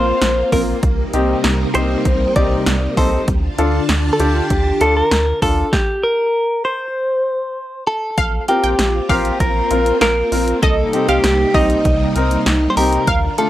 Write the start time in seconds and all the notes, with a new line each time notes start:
Already playing: A#1 A#3 C4 F4 C5
0.22 A#1, snare, closed hi-hat
0.52 A#1 A#3 C4 F4 A#4, kick, open hi-hat
0.83 C2 C3 G3 D#4, kick, closed hi-hat
1.13 C2 C4 D#4 G4, closed hi-hat
1.44 C2, snare, closed hi-hat
1.75 C2 C4 D#4 G4 C5, closed hi-hat
2.05 C2, kick, closed hi-hat
2.36 C2 C4 D#4 G4 D5, kick, closed hi-hat
2.66 C2, snare, closed hi-hat
2.97 C2 C4 D#4 A4 C5, kick, open hi-hat
3.28 D2 D3 D4 F4 A5, kick, closed hi-hat
3.58 D2 D4 F4 A4, closed hi-hat
3.89 D2, snare, closed hi-hat
4.13 A4
4.20 D2 D4 F4 G4 A4, closed hi-hat
4.50 D2, kick, closed hi-hat
4.81 D2 D4 F4 A4, closed hi-hat
4.97 A#4
5.11 D2, snare, closed hi-hat
5.42 D2 D4 F4 A4, kick, open hi-hat
5.73 G4, kick, snare
6.03 A#4
6.65 C5
7.87 A4
8.18 A#1 A#3 C4 F4 F5, kick, closed hi-hat
8.48 C4 F4 G4 A#4, closed hi-hat
8.64 A#1 G5, closed hi-hat
8.79 A#1, snare, closed hi-hat
9.09 A#1 C4 F4 G4 A#4 F5, kick, open hi-hat
9.25 closed hi-hat
9.40 A#1 A#4, kick, closed hi-hat
9.71 A#1 C4 F4 A#4, closed hi-hat
9.86 closed hi-hat
10.01 A#1 A#4 F5, snare, closed hi-hat
10.32 A#1 C4 F4 A#4, open hi-hat
10.48 closed hi-hat
10.63 C2 C3 G3 D#4 A4 D#5, kick, closed hi-hat
10.93 C4 D#4 G4, closed hi-hat
11.09 C2 G4 F5, closed hi-hat
11.24 C2, snare, closed hi-hat
11.54 C2 C4 D#4 G4 D#5, kick, open hi-hat
11.70 closed hi-hat
11.85 C2, kick, closed hi-hat
12.16 C2 C4 D#4 A#4, closed hi-hat
12.31 closed hi-hat
12.46 C2, snare, closed hi-hat
12.70 C5
12.77 C2 C4 D#4 G4 A#4, open hi-hat
12.93 closed hi-hat
13.07 D2 D3 D4 F4 F5 A5, kick, closed hi-hat
13.38 A3 D4 F4 A4, closed hi-hat